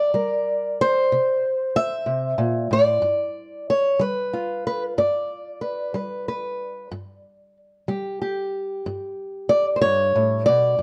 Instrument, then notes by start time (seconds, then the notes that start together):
steel-string acoustic guitar
Already playing: D5
0.14 G3 A#4
0.81 C5
1.12 C3
1.76 E5
2.06 C3
2.38 A#2
2.71 A2 D5
3.02 G2
3.70 C#5
3.99 G3 B4
4.33 F4
4.67 B4
4.98 G2 D5
5.61 B4
5.94 G3 B4
6.28 B4
6.91 G2
7.88 G3 G4
8.22 G4
8.86 G2
9.49 D5
9.76 C5
9.81 G2 C#5
10.15 A2
10.46 B2 D5
10.78 G2